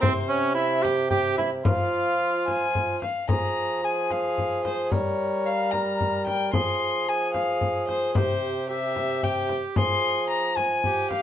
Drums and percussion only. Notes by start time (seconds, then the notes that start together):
0.03 frame drum
0.85 frame drum
1.11 frame drum
1.38 frame drum
1.65 frame drum
2.48 frame drum
2.75 frame drum
3.02 frame drum
3.29 frame drum
4.11 frame drum
4.38 frame drum
4.65 frame drum
4.92 frame drum
5.73 frame drum
6.01 frame drum
6.27 frame drum
6.53 frame drum
7.34 frame drum
7.61 frame drum
7.89 frame drum
8.15 frame drum
8.96 frame drum
9.23 frame drum
9.49 frame drum
9.76 frame drum
10.57 frame drum
10.84 frame drum
11.11 frame drum